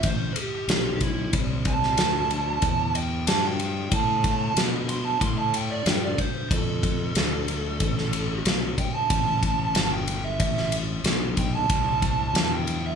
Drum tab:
RD |x-x-x-x-x-x-x-x-|x-x-x-x-x-x-x-x-|x-x-x-x-x-x-x-x-|x-x-x-x-x-x-x-x-|
SD |----o------oo---|----o-------o---|----o-------o---|-o--o-------o---|
BD |o-----o-o-o-----|o-------o-o-----|o-----o-o-o-----|o-----o-o-o-----|

RD |x-x-x-x-x-x-x-x-|
SD |-o--o-------o---|
BD |o-----o-o-o-----|